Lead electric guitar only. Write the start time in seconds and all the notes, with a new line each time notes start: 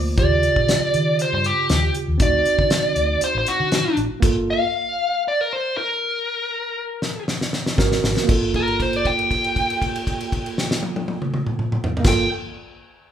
0.19 D5
1.22 C5
1.35 C5
1.46 G4
2.22 D5
3.24 C5
3.38 C5
3.48 F#4
4.50 F5
5.28 D5
5.41 A#4
5.53 C5
5.77 A#4
8.56 A#4
8.82 C5
8.96 D5
9.07 G5
12.07 G5